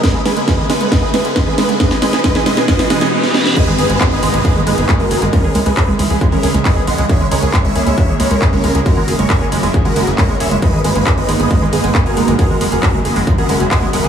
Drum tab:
CC |----------------|----------------|x---------------|----------------|
HH |x-oxx-oxx-oxx-ox|x-oxx-oxxoox----|x-oxx-oxx-oxx-ox|x-oxx-oox-oxx-ox|
CP |----------------|----------------|----x-------x---|----x-------x---|
SD |o-o-o-o-o-o-o-o-|oooooooooooo-ooo|----------------|----------------|
BD |o---o---o---o---|o---o---o-------|o---o---o---o---|o---o---o---o---|

CC |----------------|----------------|----------------|----------------|
HH |x-oxx-oxx-oxx-ox|x-oxx-oox-oxx-ox|x-oxx-oxx-oxx-ox|x-oxx-oox-oxx-ox|
CP |----x-------x---|----x-------x---|----x-------x---|----x-------x---|
SD |----------------|----------------|----------------|----------------|
BD |o---o---o---o---|o---o---o---o---|o---o---o---o---|o---o---o---o---|